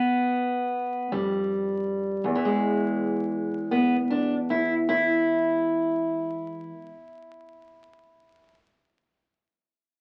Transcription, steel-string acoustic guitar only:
Already playing: B3
1.12 F2 G3
2.24 E2
2.35 E3
2.45 G#3
3.71 B3
4.10 D4
4.50 E4
4.89 E4

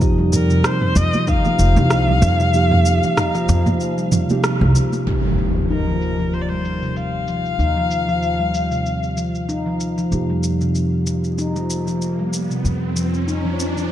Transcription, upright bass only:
Already playing: F2
0.96 F2
1.59 F1
1.77 C2
2.22 F2
3.49 F2
4.61 C2
5.07 D#2
7.59 D#2
10.12 F2
12.64 F2

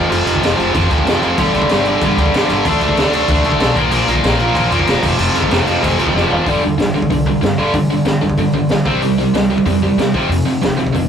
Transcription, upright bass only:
0.10 F1
0.26 F1
0.43 F1
0.58 F1
0.75 F1
0.89 D2
1.05 F1
1.21 F1
1.38 G1
1.53 G1
1.69 G1
2.02 G1
2.17 D2
2.32 G1
2.49 G1
2.65 D2
2.80 D2
2.96 D2
3.12 D2
3.28 D2
3.44 C2
3.60 B1
3.76 A#1
3.92 A#1
4.08 A#1
4.24 A#1
4.55 A#1
4.71 F2
4.86 E1
5.02 F1
5.17 F1
5.33 F1
5.49 F1
5.65 F1
5.83 F1
5.98 D2
6.14 F1
6.30 F#1
6.46 G1
6.78 G1
7.11 C2
7.42 G2
7.58 G1
7.73 G2
7.89 G1
8.05 G1
8.21 G1
8.37 G1
8.54 G1
8.70 G1
8.85 C2
9.02 C2
9.33 C2
9.65 F2
9.97 C3
10.14 F1
10.29 F2
10.45 F1
10.61 F1
10.78 F1
10.94 F1

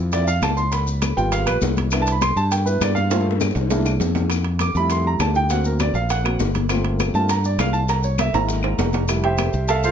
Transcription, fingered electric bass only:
Already playing: F2
0.42 C#2
1.17 G#1
1.47 A#1
1.62 C2
2.36 G2
2.81 G2
3.56 C2
4.00 F2
4.75 F2
5.19 D2
5.94 A#1
6.39 G1
7.14 G2
7.58 C2
8.34 G#1
8.78 F1
9.54 C2

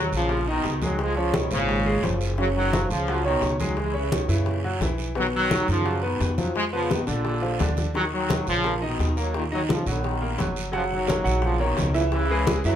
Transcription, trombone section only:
Already playing: D#3 F#3
0.14 C#3 F3
0.49 B2 D#3
0.83 D#3 F#3
1.00 F3 G#3
1.17 C#3 F3
1.35 B2 D#3
1.53 A#2 C#3
2.39 C#3 F#3
2.56 D#3 F#3
2.90 C#3 F3
3.25 B2 D#3
3.61 D#3 F#3
3.78 E3 G#3
3.96 C#3 E3
4.12 B2 D#3
4.31 A#2 C#3
5.18 D#3 F#3
5.35 D#3 F#3
5.70 C#3 F3
6.04 B2 D#3
6.38 D#3 F#3
6.56 F3 G#3
6.73 C#3 F3
6.91 B2 D#3
7.08 A#2 D3
7.95 D#3 F#3
8.13 D#3 F#3
8.48 C#3 F3
8.76 F3
8.83 B2 D#3
9.19 D#3 F#3
9.35 A#2 D#3
9.53 D#3 F#3
9.70 C#3 F3
9.88 D#3 B3
10.75 C#3 F3
10.92 D#3 F#3
11.43 C#3 F3
11.60 B2 D#3
11.96 A#2 C#3
12.12 C#3 E3
12.65 C#3 F#3

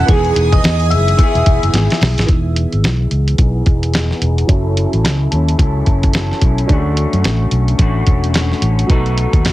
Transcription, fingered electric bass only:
0.08 E1
0.36 E1
0.63 E2
0.91 F#1
1.35 E1
1.46 E1
1.63 F#1
1.73 G#1
2.01 B1
2.17 G#1
2.29 E1
2.73 G#1
2.84 B1
3.11 C#2
3.38 B1
3.66 E1
4.21 E1
4.49 F#1
4.93 A1
5.04 C#2
5.32 D#2
5.59 C#2
5.87 F#1
6.42 B1
6.69 D2
7.13 F#2
7.24 A1
7.51 B1
7.79 A1
8.07 E1
8.62 A1
8.89 B1
9.33 D#2
9.45 F#1

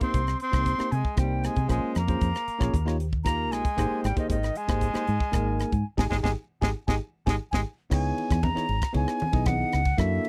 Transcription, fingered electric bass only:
0.14 C2
0.53 C2
0.80 muted fingered electric bass stroke
0.92 C3
1.05 muted fingered electric bass stroke
1.17 C2
1.57 C3
1.69 A#1
1.84 muted fingered electric bass stroke
1.96 F2
2.21 F2
2.48 muted fingered electric bass stroke
2.61 A#1
2.74 D#2
3.51 A#1
3.78 G#1
3.91 muted fingered electric bass stroke
4.04 G#1
4.30 G#1
4.69 G#1
4.95 muted fingered electric bass stroke
5.08 G#2
5.34 G#1
5.73 G#2
5.98 G#1
6.11 G#1
6.24 G#1
6.62 G#1
6.88 G#1
7.27 G#1
7.53 G#1
7.91 C#2
8.31 E2
8.57 muted fingered electric bass stroke
8.69 G#1
8.95 C#2
9.22 muted fingered electric bass stroke
9.33 B1
9.74 C#2
9.98 F#2

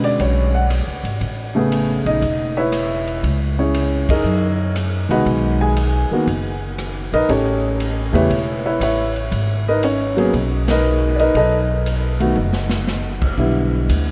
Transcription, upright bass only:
Already playing: B2
0.20 B1
0.87 C#2
1.03 G#1
1.21 A1
2.05 A#1
2.22 E1
3.23 C#2
4.09 F2
4.24 F#2
5.09 C2
5.26 B1
6.11 muted upright bass stroke
6.27 F#1
7.12 A#1
7.29 A1
8.13 E2
8.30 E1
8.80 A1
9.32 G#1
10.33 B1
11.35 B1
12.36 F#1
13.37 B1
13.89 D2

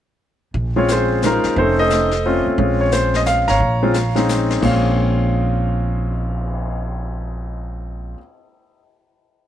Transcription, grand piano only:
0.76 G#3 C4 C#4 F4 C#5
0.92 F4 G#4 C5
1.24 G#3 C#4 D#4 A#4 C5
1.28 C#4 F4
1.58 A3 C4 C#4 D#4 A4 C5
1.79 A4 C5 D#5
2.25 A3 C4 C#4 F4
2.59 G#3 C4 C#4 F4
2.81 C#5
2.93 C5
3.16 D#5
3.27 F5
3.48 C#5 F5 A#5
3.83 G#3 C4 C#4 F4
4.15 G#3 C4 C#4 D#4
4.61 A#2 G#3 C4 C#4 F5

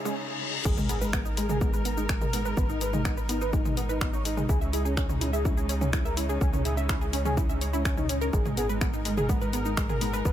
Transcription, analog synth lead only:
0.06 C#4
0.65 G#4
0.77 G#3
0.89 G#4
1.01 G#3
1.13 G#3
1.37 G#3
1.49 G#4
1.61 G#3
1.74 G#3
1.97 G#3
2.09 G#3
2.21 A#4
2.33 G#3
2.46 G#3
2.57 B4
2.70 D#4
2.81 B4
2.94 D#4
3.05 D#4
3.30 D#4
3.42 B4
3.53 D#4
3.66 D#4
3.90 D#4
4.02 D#4
4.14 C#5
4.25 D#4
4.37 D#4
4.49 G#4
4.61 C#4
4.73 G#4
4.85 C#4
4.97 C#4
5.21 C#4
5.33 G#4
5.45 C#4
5.57 C#4
5.81 C#4
5.93 C#4
6.05 A#4
6.17 C#4
6.29 C#4
6.41 G#4
6.53 C#4
6.65 G#4
6.77 C#4
6.89 C#4
7.13 C#4
7.25 G#4
7.38 C#4
7.50 C#4
7.74 C#4
7.86 C#4
7.98 D#4
8.10 C#4
8.22 C#4
8.34 G#4
8.46 G#3
8.57 G#4
8.69 G#3
8.82 G#3
9.05 G#3
9.17 G#4
9.29 G#3
9.41 G#3
9.65 G#3
9.77 G#3
9.89 A#4
10.01 G#3
10.13 G#3
10.25 B4

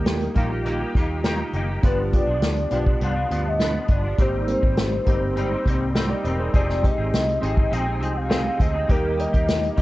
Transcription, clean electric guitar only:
Already playing: A#3 D#4 G4
0.35 D#3 A#3 D#4 G4
0.50 A#3 D#4 G4
0.65 D#3 A#3 D#4 G4
0.79 A#3 D#4 G4
0.94 D#3 A#3 D#4 G4
1.24 D#3 A#3 D#4 G4
1.38 A#3 D#4 G4
1.54 D#3 A#3 D#4 G4
1.69 A#3 D#4 G4
1.83 G2 F3 B3 D4
2.27 F3 B3 D4
2.71 G2 F3 B3 D4
2.85 F3 B3 D4
3.01 G2 F3 B3 D4
3.15 F3 B3 D4
3.30 G2 F3 B3 D4
3.59 G2 F3 B3 D4
3.74 F3 B3 D4
3.88 G2 F3 B3 D4
4.04 F3 B3 D4
4.19 G#2 G3 C4 D#4
4.61 G3 C4 D#4
5.05 G#2 G3 C4 D#4
5.36 G#2 G3 C4 D#4
5.50 G3 C4 D#4
5.65 G#2 G3 C4 D#4
5.95 G#2 G3 C4 D#4
6.09 G3 C4 D#4
6.24 G#2 G3 C4 D#4
6.38 G3 C4 D#4
6.53 F3 C4 D#4 G#4
6.97 C4 D#4 G#4
7.41 F3 C4 D#4 G#4
7.55 C4 D#4 G#4
7.71 F3 C4 D#4 G#4
7.85 C4 D#4 G#4
8.00 F3 C4 D#4 G#4
8.29 F3 C4 D#4 G#4
8.43 C4 D#4 G#4
8.58 F3 C4 D#4 G#4
8.73 C4 D#4 G#4
8.88 D#3 A#3 D#4 G4
9.32 A#3 D#4 G4
9.76 D#3 A#3 D#4 G4

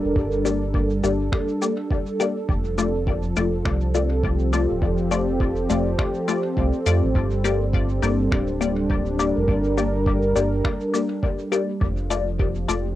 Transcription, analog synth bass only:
0.04 F1
0.16 G1
1.03 G1
2.49 F1
3.37 F1
3.65 C2
4.71 D1
4.82 F1
5.70 F1
6.57 C2
6.86 F2
7.04 A1
7.15 G1
8.02 G1
8.32 D1
9.37 F1
9.48 G1
10.36 G1
11.81 F1
12.69 F1

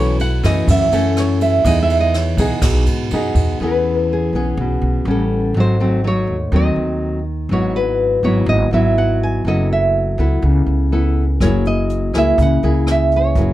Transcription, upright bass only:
Already playing: B1
0.43 F#2
0.68 F#2
0.92 F#2
1.64 E2
2.37 B1
2.62 B1
2.87 G#2
3.11 F#2
3.35 E2
3.60 E2
4.33 B1
4.57 B1
4.82 B1
5.05 A1
5.54 G#1
6.27 D#2
6.52 D#2
6.76 D#2
7.49 G#1
8.23 G#1
8.46 G#1
8.71 G#1
9.45 F#1
10.18 C#2
10.42 C#2
10.66 C#2
11.40 F#1
12.13 C#2
12.38 C#2
12.63 C#2
13.35 F#1

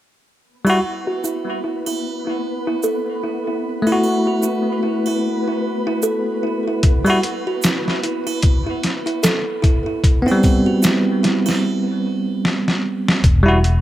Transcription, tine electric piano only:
0.65 G3 E4
0.70 F#4
3.82 A3
3.87 E4
3.92 F#4
7.05 G3 E4
7.10 F#4
10.22 B3
10.27 C4
10.31 G3
13.43 G3 E4
13.48 F#4

